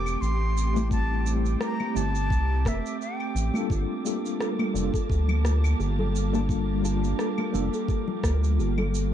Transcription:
Already playing: E1 A3 C4 G4 D6
0.06 claves, shaker
0.21 A1 C6, shaker
0.57 shaker
0.74 G3 A3 C4 E4 G4, high conga, shaker
0.90 G4 A5, kick, shaker
1.25 G3 A3 C4 E4 G4, shaker
1.46 shaker
1.61 A#5, cross-stick, shaker
1.80 high conga, claves
1.94 G1 G3 A3 C4 E4 G4 A5, shaker
2.15 shaker
2.30 C2, kick, shaker
2.65 E1 E5, kick, cross-stick, high conga, shaker
2.86 shaker
3.02 G5, shaker
3.20 claves
3.35 A1, shaker
3.53 G3 A#3 D4 F4 A4, high conga, claves, shaker
3.70 G1 G3 A#3 F4 A5, kick, shaker
4.05 G3 A#3 D4 F4 G4 A4, shaker
4.26 shaker
4.40 A4, cross-stick, shaker
4.59 A#4, high conga, claves
4.74 F1 G3 A#3 D4 F4 A4, low conga, shaker
4.94 A4, kick, shaker
5.10 D2 G4, kick, shaker
5.28 low conga, claves
5.45 F4, cross-stick, high conga, shaker
5.64 claves, shaker
5.79 G1 G4, shaker
5.99 A4, low conga
6.16 shaker
6.32 G3 A#3 D4 F4 A#4 A5, high conga, shaker
6.49 F4, kick, shaker
6.82 G3 A#3 D4 F4 G4 A5, shaker
7.04 shaker
7.19 A4, cross-stick, shaker
7.38 A#4, high conga, claves
7.52 F1 G3 A#3 D4 F4 A4, low conga, shaker
7.74 A4, shaker
7.88 G4, kick, shaker
8.08 low conga
8.23 D2 F4, kick, cross-stick, high conga, shaker
8.44 shaker
8.58 G1 G4, shaker
8.78 A4, low conga, claves
8.95 shaker

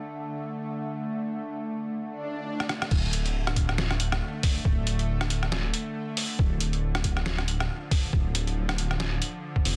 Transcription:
Already playing: D3 A3
2.04 swell
2.60 cross-stick
2.69 cross-stick
2.82 cross-stick
2.91 D1 D3 A3, kick, crash
3.13 closed hi-hat
3.26 closed hi-hat
3.47 cross-stick
3.56 kick, closed hi-hat
3.69 cross-stick
3.78 snare
3.91 cross-stick
4.00 D1, closed hi-hat
4.12 cross-stick
4.43 kick, open hi-hat
4.65 D1, kick
4.87 closed hi-hat
4.99 closed hi-hat
5.21 cross-stick
5.30 closed hi-hat
5.43 cross-stick
5.52 snare
5.74 closed hi-hat
6.17 open hi-hat
6.39 D1 F3, kick
6.61 closed hi-hat
6.73 closed hi-hat
6.95 cross-stick
7.04 kick, closed hi-hat
7.17 cross-stick
7.26 snare
7.38 cross-stick
7.48 D1, closed hi-hat
7.60 cross-stick
7.91 kick, open hi-hat
8.13 D1, kick
8.35 closed hi-hat
8.47 closed hi-hat
8.69 cross-stick
8.78 closed hi-hat
8.91 cross-stick
9.00 snare
9.22 closed hi-hat
9.56 kick
9.65 F1, open hi-hat

